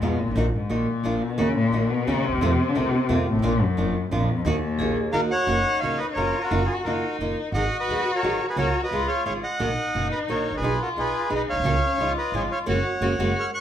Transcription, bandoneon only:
5.12 A#4 F5
5.31 C#5 F#5
5.80 C#5 F5
5.97 B4 D#5
6.13 A#4 C#5
6.41 F#4 A#4
6.66 F4 G#4
6.84 F#4 A#4
7.53 D#5 F#5
7.79 B4 D#5
8.15 A#4 C#5
8.49 G#4 B4
8.58 A#4 C#5
8.84 B4 D#5
9.07 C#5 F5
9.25 C#5 F5
9.43 D#5 F#5
10.11 B4 D#5
10.30 A#4 C#5
10.57 G#4 B4
10.82 F#4 A#4
10.99 G#4 B4
11.36 B4 D#5
11.49 C#5 F5
12.18 B4 D#5
12.35 G#4 C#5
12.51 C#5 F5
12.68 C#5 F#5
13.39 C#6 F6
13.54 C#6 F#6

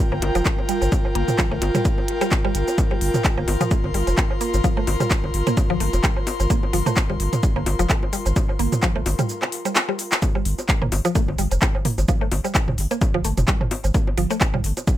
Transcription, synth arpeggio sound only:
0.12 A#3
0.35 F3
0.45 A3
0.69 G3
1.15 A#3
1.38 F3
1.51 A3
1.75 G3
2.21 G3
2.45 G3
2.91 G3
3.38 A#3
3.61 F3
3.71 A3
3.94 G3
4.41 A#3
4.64 F3
4.77 A3
5.00 G3
5.47 A#3
5.70 F3
5.80 A3
6.04 G3
6.50 A#3
6.73 F3
6.86 A3
7.10 G3
7.56 A#3
7.79 F3
7.89 A3
8.13 G3
8.59 A#3
8.83 F3
8.96 A3
9.19 G3
9.65 G3
9.89 G3
10.35 G3
10.82 A#3
11.05 F3
11.15 A3
11.38 G3
11.85 A#3
12.08 F3
12.21 A3
12.44 G3
12.91 A#3
13.14 F3
13.25 A3
13.48 G3
13.94 A#3
14.18 F3
14.30 A3
14.54 G3

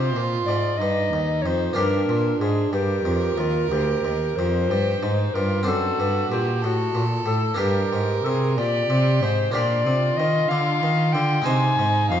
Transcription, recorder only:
Already playing: C5
0.46 D5
0.77 D#5
1.42 C#5
1.47 C5
1.76 A#4
2.40 G#4
2.72 G4
3.37 F4
3.70 G4
4.36 C5
5.34 A#4
5.67 A4
6.31 G4
6.62 G4
6.66 F#4
7.26 A4
7.59 G4
8.24 A4
8.29 G#4
8.57 D5
9.23 C5
9.54 D5
10.17 D#5
10.49 F5
11.13 G5
11.45 G#5
12.09 F5

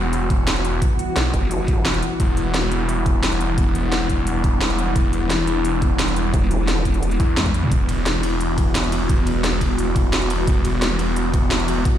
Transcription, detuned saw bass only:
Already playing: E1
1.16 B1
1.85 E1
2.20 E1
3.58 E1
4.96 E1
7.20 E2
7.72 E1
9.10 E1
10.47 E1

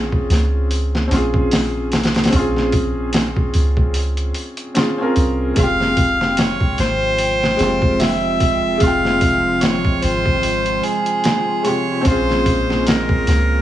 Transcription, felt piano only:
Already playing: C4 C#4 F4 G#4
1.08 C4 C#4
1.14 F4 G#4
2.29 C4 C#4
2.36 F4 G#4
4.75 C4 C#4 F4
4.79 G#4
4.98 C4 C#4 F4
5.02 A#4
5.54 C3 G#3
5.60 F4 G4
7.57 G#3 C4
7.63 F4 G4
8.78 C3 G#3
8.84 F4 G5
11.63 C3 G#3 F4
11.68 G4
12.01 C4 C#4
12.07 F4 G#4

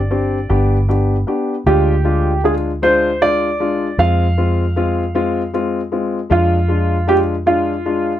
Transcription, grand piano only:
Already playing: D5
1.67 G4
2.45 G#4
2.83 C5
3.22 D5
3.99 F5
6.32 F4
7.09 G4
7.47 F4

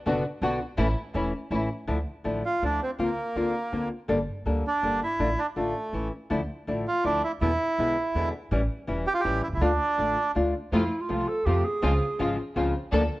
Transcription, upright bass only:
0.06 F#1
0.42 B1
0.78 A1
1.15 E1
1.51 A1
1.89 D2
2.25 A1
2.62 D2
2.99 D2
3.36 D2
3.73 D2
4.09 G1
4.46 D2
4.83 G1
5.19 A1
5.57 A1
5.93 A1
6.31 D2
6.68 A1
7.05 D2
7.41 E2
7.78 B1
8.15 E2
8.51 A1
8.88 E1
9.25 A1
9.48 B1
9.53 C2
9.57 C#2
9.61 D2
9.99 A1
10.36 D2
10.72 F2
11.10 C2
11.46 F2
11.83 C#2
12.20 G#1
12.56 C#2
12.92 D2

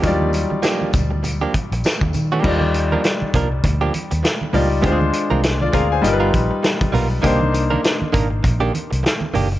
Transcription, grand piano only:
0.02 F#3 D#4 F4
0.07 G3 D5
2.42 G3 D#4 F4
2.48 D5
4.53 G3 D#4 F4 D5
4.81 G#3 D4 F4
4.86 C5
5.62 F4 D5
5.74 G#4 F5
5.92 C5 G#5
6.02 G3 D#4 F4
6.07 A#4
6.13 B4
7.21 A#3 D4 D#4
7.26 C5

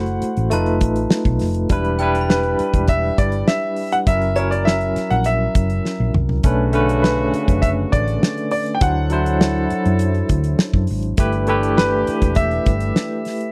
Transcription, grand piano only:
Already playing: F#5
2.30 B4
2.89 E5
3.18 D5
3.48 E5
3.93 F#5
4.07 E5
4.36 C#5
4.51 D5
4.65 E5
5.11 F#5
5.26 E5
7.02 B4
7.62 E5
7.92 D5
8.51 D5
8.75 G5
8.82 F#5
11.77 B4
12.36 E5

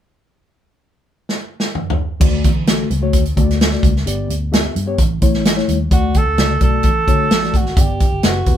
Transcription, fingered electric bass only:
2.21 D2
2.45 A1
2.90 C#2
3.14 D2
3.37 D2
3.83 C#2
4.06 G1
4.28 D2
4.75 G2
4.98 A1
5.22 A1
5.68 D#2
5.92 D2
6.27 D2
6.38 C#2
6.61 B1
6.84 A1
7.08 D3
7.32 A1
7.54 G#1
7.77 G1
8.12 G1
8.24 F#1
8.47 E1

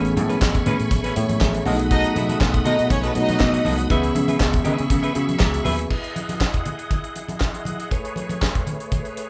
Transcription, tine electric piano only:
Already playing: E3 A3 B3 C#4 G#4
1.16 C#5 E5
1.41 G#4 E5
1.65 F#3 A3 B3 D4 A4 F#5
1.72 D#4
3.15 F#3 A3 B3 D#4 E4
3.22 F#4
3.89 E3 G#3 B3 C#4 G#4
5.15 F#4
5.41 G#4
5.65 B4

